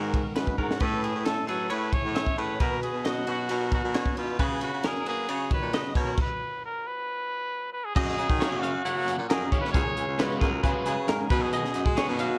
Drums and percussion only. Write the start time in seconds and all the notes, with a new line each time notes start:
0.14 kick, ride
0.36 snare, ride
0.47 kick
0.58 kick
0.71 snare
0.80 kick, ride
1.04 ride
1.26 snare, ride
1.48 ride
1.70 ride
1.93 kick, ride
2.16 snare, ride
2.26 kick
2.38 ride
2.60 kick, ride
2.83 ride
3.05 snare, ride
3.27 ride
3.49 ride
3.72 kick, ride
3.94 snare, ride
4.06 kick
4.17 ride
4.39 kick, ride
4.61 ride
4.83 snare, ride
5.06 ride
5.29 ride
5.51 kick, ride
5.73 snare, ride
5.95 kick, ride
6.17 kick, crash
7.96 kick, crash
8.09 snare
8.19 closed hi-hat
8.30 kick
8.41 snare, closed hi-hat
8.64 closed hi-hat
8.86 closed hi-hat
9.08 closed hi-hat
9.30 snare, closed hi-hat
9.52 kick, closed hi-hat
9.65 snare
9.74 kick, closed hi-hat
9.97 closed hi-hat
10.19 snare, closed hi-hat
10.41 kick, closed hi-hat
10.64 kick, closed hi-hat
10.86 closed hi-hat
11.08 snare, closed hi-hat
11.30 kick, closed hi-hat
11.53 closed hi-hat
11.65 snare
11.74 closed hi-hat
11.86 kick
11.97 snare, closed hi-hat
12.19 closed hi-hat